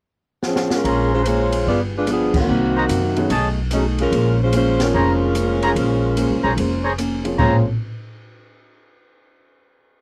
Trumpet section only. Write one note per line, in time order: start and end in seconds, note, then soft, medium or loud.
0.84 1.66 C#4 medium
0.84 1.66 G#4 medium
0.84 1.66 A#5 medium
0.84 1.66 C6 medium
2.76 2.85 F#4 medium
2.76 2.85 C5 medium
2.76 2.85 D#5 medium
2.76 2.85 A#5 medium
3.30 3.49 G#4 medium
3.30 3.49 C#5 medium
3.30 3.49 D#5 medium
3.30 3.49 A5 medium
4.94 5.12 G#4 medium
4.94 5.12 C5 medium
4.94 5.12 C#5 medium
4.94 5.12 A#5 medium
5.62 5.71 G#4 medium
5.62 5.71 C5 medium
5.62 5.71 C#5 medium
5.62 5.71 A#5 medium
6.44 6.53 G#4 medium
6.44 6.53 C5 medium
6.44 6.53 C#5 medium
6.44 6.53 A#5 medium
6.84 6.94 G#4 medium
6.84 6.94 C5 medium
6.84 6.94 C#5 medium
6.84 6.93 A#5 medium
7.38 7.57 G#4 medium
7.38 7.57 C5 medium
7.38 7.57 C#5 medium
7.38 7.57 A#5 medium